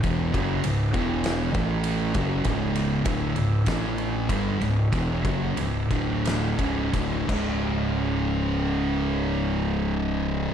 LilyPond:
<<
  \new Staff \with { instrumentName = "Distorted electric guitar" } { \clef bass \time 4/4 \key cis \phrygian \tempo 4 = 94 <e, b, e>8 <fis, cis fis>8 <cis, gis,>8 <e, b, e>4 <a, e a>4 <fis, cis fis>8 | <cis, gis, cis>4 <d, a, d>8 <cis, gis,>8 <a, e a>4 <g, d g>8 <cis, gis,>8 | <e, b, e>8 <fis, cis fis>8 <cis, gis,>8 <d, a, d>4 <cis, gis, cis>8 <d, a, d>8 <cis, gis, cis>8~ | <cis, gis, cis>1 | }
  \new Staff \with { instrumentName = "Distorted electric guitar" } { \clef bass \time 4/4 \key cis \phrygian <e, b, e>8 <fis, cis fis>8 <cis, gis,>8 <e, b, e>4 <a, e a>4 <fis, cis fis>8 | <cis, gis, cis>4 <d, a, d>8 <cis, gis,>8 <a, e a>4 <g, d g>8 <cis, gis,>8 | <e, b, e>8 <fis, cis fis>8 <cis, gis,>8 <d, a, d>4 <cis, gis, cis>8 <d, a, d>8 <cis, gis, cis>8~ | <cis, gis, cis>1 | }
  \new Staff \with { instrumentName = "Fingered electric bass" } { \clef bass \time 4/4 \key cis \phrygian e,,8 fis,,8 cis,,8 e,,4 a,,4 fis,,8 | cis,,4 d,,8 cis,,8 a,,4 g,,8 cis,,8 | e,,8 fis,,8 cis,,8 d,,4 cis,,8 d,,8 cis,,8~ | cis,,1 | }
  \new DrumStaff \with { instrumentName = "Drums" } \drummode { \time 4/4 <bd cymr>8 <bd cymr>8 cymr8 <bd cymr>8 <cymr sn>8 <bd cymr>8 cymr8 <bd cymr>8 | <bd cymr>8 cymr8 <bd cymr>8 cymr8 <bd cymr sn>8 cymr8 <bd cymr>8 cymr8 | <bd cymr>8 <bd cymr>8 cymr8 <bd cymr>8 <cymr sn>8 <bd cymr>8 <bd cymr>8 <cymc bd>8 | r4 r4 r4 r4 | }
>>